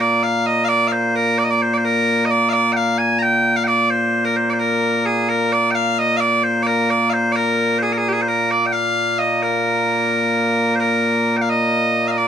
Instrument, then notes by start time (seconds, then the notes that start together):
bagpipes
Already playing: A#2 A#3
0.01 D5
0.23 F5
0.46 D#5
0.65 F5
0.69 D5
0.88 F5
0.92 C5
1.16 A#4
1.38 D5
1.44 D#5
1.50 D5
1.56 D5
1.62 C5
1.73 C5 D5
1.85 A#4
2.25 D#5
2.31 D5
2.49 D5 F5
2.73 G5
2.77 F5
2.98 G#5
3.19 G5 A#5
3.56 F5
3.64 D5 G5
3.90 C5
4.25 A#4
4.36 C5
4.50 C5 D5
4.59 A#4
5.06 G#4
5.29 A#4
5.52 D5
5.71 F5 G5
5.99 D#5
6.17 D5 F5
6.43 C5
6.62 D5
6.67 A#4
6.90 D5
7.10 C5 F5
7.32 A#4 D5
7.78 C5
7.82 G#4
7.93 A#4
7.98 G#4
8.09 G4
8.13 G#4
8.22 C5
8.28 A#4
8.51 D5
8.66 G5
8.72 F5
9.19 D#5
9.43 A#4
10.75 C5
10.80 A#4
11.37 G5
11.42 F5
11.50 D#5
12.08 D#5 F5
12.18 D5